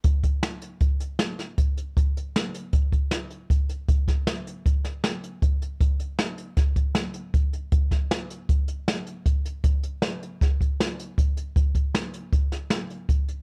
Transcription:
\new DrumStaff \with { instrumentName = "Drums" } \drummode { \time 5/4 \tempo 4 = 156 <hh bd>8 <hh bd>8 <hh sn>8 hh8 <hh bd>8 hh8 <hh sn>8 <hh sn>8 <hh bd>8 hh8 | <hh bd>8 hh8 <hh sn>8 hh8 <hh bd>8 <hh bd>8 <hh sn>8 hh8 <hh bd>8 hh8 | <hh bd>8 <hh bd sn>8 <hh sn>8 hh8 <hh bd>8 <hh sn>8 <hh sn>8 hh8 <hh bd>8 hh8 | <hh bd>8 hh8 <hh sn>8 hh8 <hh bd sn>8 <hh bd>8 <hh sn>8 hh8 <hh bd>8 hh8 |
<hh bd>8 <hh bd sn>8 <hh sn>8 hh8 <hh bd>8 hh8 <hh sn>8 hh8 <hh bd>8 hh8 | <hh bd>8 hh8 <hh sn>8 hh8 <hh bd sn>8 <hh bd>8 <hh sn>8 hh8 <hh bd>8 hh8 | <hh bd>8 <hh bd>8 <hh sn>8 hh8 <hh bd>8 <hh sn>8 <hh sn>8 hh8 <hh bd>8 hh8 | }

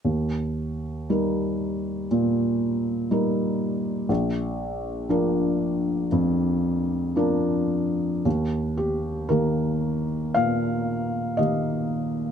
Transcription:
<<
  \new Staff \with { instrumentName = "Felt piano" } { \time 4/4 \key ees \major \tempo 4 = 58 r1 | r1 | r8 g'8 bes'4 f''4 ees''4 | }
  \new Staff \with { instrumentName = "Felt piano" } { \clef bass \time 4/4 \key ees \major ees,4 <g ees' bes'>4 bes,4 <g ees' bes'>4 | bes,,4 <f d' bes'>4 f,4 <f d' bes'>4 | ees,4 <ees bes g'>4 bes,4 <ees bes g'>4 | }
>>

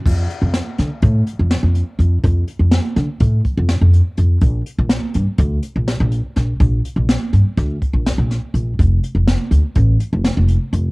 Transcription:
<<
  \new Staff \with { instrumentName = "Upright bass" } { \clef bass \time 9/8 \key f \major \tempo 4. = 82 f,8 r16 f,8 r16 d16 r16 a,8 r16 f,8 f,8 r16 f,8 | f,8 r16 f,8 r16 d16 r16 a,8 r16 f,8 f,8 r16 f,8 | bes,,8 r16 bes,,8 r16 g,16 r16 d,8 r16 bes,,8 bes,,8 r16 bes,,8 | bes,,8 r16 bes,,8 r16 g,16 r16 d,8 r16 bes,,8 bes,,8 r16 bes,,8 |
f,,8 r16 f,,8 r16 d,16 r16 a,,8 r16 f,,8 f,,8 r16 f,,8 | }
  \new DrumStaff \with { instrumentName = "Drums" } \drummode { \time 9/8 <cymc bd>8 hh8 <hh sn>8 <hh sn>8 <hh bd>8 hh8 <hh sn>8 hh8 hh8 | <hh bd>8 hh8 <hh sn>8 <hh sn>8 <hh bd>8 <hh bd>8 <hh sn>8 hh8 hh8 | <hh bd>8 hh8 <hh sn>8 hh8 <hh bd>8 hh8 <hh sn>8 hh8 <hh sn>8 | <hh bd>8 hh8 <hh sn>8 hh8 <hh bd sn>8 <hh bd>8 <hh sn>8 <hh sn>8 hh8 |
<hh bd>8 hh8 <hh sn>8 hh8 <hh bd>8 hh8 <hh sn>8 hh8 hh8 | }
>>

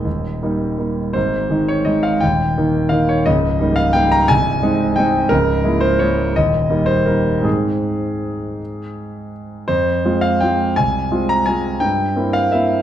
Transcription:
<<
  \new Staff \with { instrumentName = "Grand piano" } { \time 3/4 \key aes \major \tempo 4 = 169 ees''2~ ees''8 r8 | c''4. des''8 ees''8 f''8 | g''2 f''8 des''8 | ees''4. f''8 g''8 bes''8 |
aes''2 g''4 | bes'4. c''8 des''4 | ees''4. c''8 bes'4 | aes'2.~ |
aes'2 r4 | \key f \minor c''4. f''8 g''4 | aes''4. bes''8 aes''4 | g''4. f''8 e''4 | }
  \new Staff \with { instrumentName = "Grand piano" } { \time 3/4 \key aes \major <ees,, ees,>4 <g bes ees'>4 <g bes ees'>4 | <aes,, aes,>4 <ees aes ees'>4 <ees aes ees'>4 | <ees,, ees,>4 <ees bes ees'>4 <ees bes ees'>4 | <des,, des,>4 <g bes ees'>4 <g bes ees'>4 |
<c,, c,>4 <aes c' ees'>4 <aes c' ees'>4 | <des,, des,>4 <aes bes fes'>4 <aes bes fes'>4 | <ees,, ees,>4 <g bes ees'>4 <g bes ees'>4 | <aes, aes c' ees'>2.~ |
<aes, aes c' ees'>2. | \key f \minor f,4 <aes c' f'>4 <aes c' f'>4 | c,4 <aes c' f'>4 <aes c' f'>4 | g,4 <bes c' e'>4 <bes c' e'>4 | }
>>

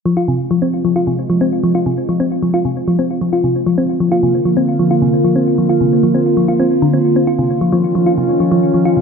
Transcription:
<<
  \new Staff \with { instrumentName = "Ambient pad" } { \clef bass \time 4/4 \key bes \minor \tempo 4 = 133 << { f'1~ | f'1~ | f'1~ | f'1~ |
f'1 | } \\ { <c aes>1~ | <c aes>1 | <d bes>1~ | <d bes>1 |
<ees des'>1 | } >> }
  \new Staff \with { instrumentName = "Synth arpeggio sound" } { \clef bass \time 4/4 \key bes \minor f16 f'16 c16 r16 f16 c'16 r16 f16 f'16 c16 r16 f16 c'16 r16 f16 f'16 | c16 r16 f16 c'16 r16 f16 f'16 c16 r16 f16 c'16 r16 f16 f'16 c16 r16 | f16 c'16 r16 f16 f'16 c16 r16 f16 c'16 r16 f16 f'16 c16 r16 f16 c'16 | r16 f16 f'16 c16 r16 f16 c'16 r16 f16 f'16 c'16 r16 d16 c'16 r16 c'16 |
f'16 c16 r16 f16 f16 r16 f16 f'16 c16 r16 f16 f16 r16 f16 f'16 c16 | }
>>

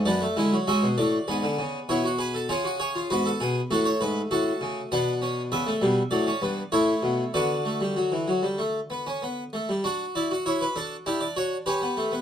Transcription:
<<
  \new Staff \with { instrumentName = "Harpsichord" } { \time 4/4 \key d \major \tempo 4 = 99 << { d''4 e''8 d''4. cis''8 b'8 | gis'8 cis''8 b'16 a'16 r8 fis'16 cis''16 b'8 a'4 | fis''4 e''4 d''4 cis''4 | d''2.~ d''8 r8 |
r8 d''8 cis''16 b'16 a'8 g'16 d''16 cis''8 b'4 | } \\ { d'8 e'8 fis'4 gis'4 e'16 fis'16 gis'16 a'16 | eis'16 fis'16 gis'16 eis'16 fis'8 gis'8 a'4 fis'4 | d'2. e'4 | fis'2.~ fis'8 r8 |
fis'4 e'8 d'8 e'8 fis'8 g'4 | } >> }
  \new Staff \with { instrumentName = "Harpsichord" } { \clef bass \time 4/4 \key d \major << { b16 a16 gis16 fis16 gis8 a8 b2 | cis'4 b4 a2 | b8 cis'8 b16 a16 g8 fis16 cis'16 b8 a4 | b8 a16 g16 fis16 e16 fis16 g16 a8 b16 cis'16 b8 a16 g16 |
d'8 e'16 fis'4~ fis'16 d'4 cis'16 b16 a16 b16 | } \\ { fis,8 d8 cis16 b,16 a,8 gis,16 d16 cis8 b,4 | cis4 gis,8 b,8 a,8 gis,8 a,8 cis8 | b,4 cis8 b,8 a,8 g,8 a,8 b,8 | d2.~ d8 r8 |
r1 | } >> }
>>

